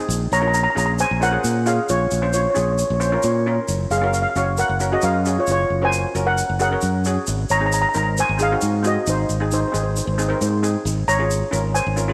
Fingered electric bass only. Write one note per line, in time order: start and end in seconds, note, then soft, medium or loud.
0.08 0.26 A#1 loud
0.32 0.66 A#1 medium
0.77 1.02 A#1 medium
1.11 1.36 A#1 medium
1.44 1.78 A#2 loud
1.90 2.06 A#1 loud
2.12 2.46 A#1 medium
2.56 2.82 A#1 medium
2.90 3.16 A#1 medium
3.24 3.58 A#2 loud
3.68 3.86 F#1 loud
3.90 4.25 F#1 medium
4.36 4.61 F#1 medium
4.69 4.95 F#1 medium
5.03 5.37 F#2 loud
5.47 5.65 F#1 loud
5.70 6.04 F#1 medium
6.15 6.41 F#1 medium
6.50 6.75 F#1 medium
6.83 7.17 F#2 loud
7.28 7.45 G#1 loud
7.50 7.84 G#1 medium
7.95 8.21 G#1 medium
8.29 8.54 G#1 medium
8.62 8.96 G#2 loud
9.07 9.24 G#1 loud
9.29 9.63 G#1 medium
9.74 10.00 G#1 medium
10.07 10.33 G#1 medium
10.41 10.75 G#2 loud
10.85 11.03 G#1 loud
11.08 11.42 G#1 medium
11.53 11.79 G#1 medium
11.87 12.12 G#1 loud